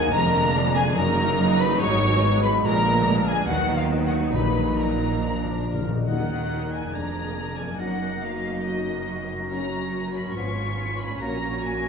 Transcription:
Already playing: D#2 D#3 F#3 A#3 D#4 G#4 A#4 D#5 G#5 A#5
0.04 D#4
0.13 F1 F2 D3 F3 G#3 D4 G#4 A#4 A#5
0.25 F3
0.35 D4
0.45 A#4
0.56 D5
0.66 G#5
0.76 G#4 A#4 G#5
0.87 D4
0.96 F#1 F#2 D#3 F#3 A#3 D#4 A#4 A#5
1.08 F#3
1.18 D#4
1.29 A#4
1.40 D#5
1.50 F#5
1.59 A#4 B4 B5
1.71 D#4
1.80 G#1 G#2 G#3 B3 F#4 C#5 C#6
1.92 D#3
2.02 D#4
2.13 B4
2.33 F#5
2.43 B4 B5
2.55 D#4
2.64 A#1 A#2 D3 G#3 D4 F4 A#4 A#5
2.75 F3
2.86 D4
3.07 D5
3.18 F5
3.27 G#4 G#5
3.38 D4
3.48 D#2 A#2 D#3 F#3 D#4 F#4 F#5
3.59 F#3
3.70 F#4
3.76 F4 F5
3.80 D#5
3.91 F#5
4.02 F#4 D#5 F#5
4.13 F#4
4.23 D#4
4.33 A#1 A#2 A#3 B4 B5
4.45 A#3
4.56 D#4
4.66 F#4
4.77 A#4 D#5 A#5
4.88 F#5
4.99 F#4
5.10 D#4
5.21 A#2 F3 D4
5.28 A#2 F3
5.37 A#2
5.43 A#2 D4
5.51 A#2 A#4
5.59 A#2
5.64 A#2 D5
5.74 A#2 F5
5.81 A#2
5.85 A#2 A#4
5.90 D#3
5.94 A#2 A#3 D4
5.99 D#4
6.03 F#4
6.07 D#2 D#3 A#3 D#4 A#4 D#5 F#5 F#6
6.72 G#5
6.76 F2
6.81 A#3
6.85 D4
6.90 F2 G#3 D4 G#4 D5 A#5
6.94 F1 D4 G#4 G#6
7.57 G#5
7.62 F#2
7.67 A#3
7.71 D#4
7.75 F#2 F#4 F#5 A#6
7.79 F#1 F#3 D#4 F#4 D#5
8.22 F5
8.64 F#3 D#4 D#5
9.33 F#2
9.38 A#3
9.42 C#4
9.47 F#4 A#4 A#5
9.51 F#3 C#4 F#4 C#5
10.15 G#2 B5
10.22 B3
10.27 C#4
10.31 G#2 F4
10.35 G#1 F3 B3 F4 B4 C#6 B6
10.99 A#2 B5
11.07 A#3
11.12 C#4
11.16 A#2 F#4
11.21 A#1 F#3 A#3 F#4 A#4 A#5 A#6
11.62 G#5

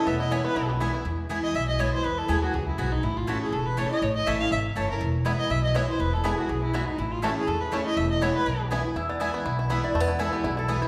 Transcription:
Already playing: E4
0.06 E1 E2 B3 E5
0.20 E4 D#5
0.31 E3 G#3 B3 E4 B4 C#5 G#5
0.45 B3 B4
0.56 B1 B2 E4
0.69 B3
0.80 E3 G#3 B3 E4 B4 G#5
0.93 B3 E4
1.05 E2
1.29 E3 G#3 B3 E4 B4 G#5
1.43 D#5
1.54 B1 B2 E5
1.68 D#5
1.79 E3 G#3 B3 E4 B4 C#5 G#5
1.93 C5
2.04 E2 B4
2.18 A4
2.28 D#2 E3 G#3 B3 E4 G#4 B4 G#5
2.43 F#4
2.54 C#2 F#2 G#4
2.67 E4
2.78 B1 G#2 B3 E4 F#4 B4 G#5
2.92 D#4
3.03 A1 A2 E4
3.17 F4
3.27 E3 A3 C#4 E4 F#4 C#5 A5
3.41 G#4
3.52 E1 E2 A4
3.66 B4
3.77 E3 A3 C#4 E4 C#5 A5
3.90 C#4 E4 D#5
4.02 A1 A2 C#5
4.15 D#5
4.26 A1 E3 A3 C#4 E4 C#5 E5 A5
4.39 C#4 E4 F5
4.51 G#1 E2 E5
4.75 F#1 E3 A3 C#4 E4 C#5 A5
4.89 C#4 E4 A#4
5.01 E1 E2
5.25 E3 G#3 B3 E4 B4 G#5
5.39 D#5
5.50 B1 B2 E5
5.63 D#5
5.74 E3 G#3 B3 E4 B4 C#5 G#5
5.88 B3 E4 C5
5.99 E1 E2 B4
6.13 A4
6.24 E3 G#3 B3 E4 G#4 B4 G#5
6.38 F#4
6.49 B1 F#2 G#4
6.63 E4
6.73 G#2 B3 E4 F#4 B4 G#5
6.87 D#4
6.98 A1 A2 E4
7.11 F4
7.22 E3 A3 C#4 E4 F#4 C#5 A5
7.36 G#4
7.47 E2 A4
7.61 B4
7.71 E3 A3 C#4 E4 C#5 A5
7.85 D#5
7.97 E1 E2 E5
8.11 D#5
8.21 E3 G#3 B3 E4 B4 C#5 G#5
8.36 B4
8.46 B1 B2
8.70 E3 G#3 B3 E4 B4 G#5
8.84 B3 E4
8.95 E2 E4 E5
9.09 B3 D5
9.20 E3 G#3 B3 E4 B4 E5 G#5
9.34 B3
9.45 B1 B2 E4
9.59 E4
9.70 E3 G#3 B3 E4 B4 E5 G#5
9.84 E4 D5
9.94 E2 A3 E5
10.00 B3
10.08 E4
10.19 E3 G#3 B3 E4 A4 B4 G#5
10.33 B3 G4
10.44 B1 B2 E4 G#4
10.57 E4 A4
10.68 E3 G#3 B3 E4 B4 G#5
10.82 E4 C5

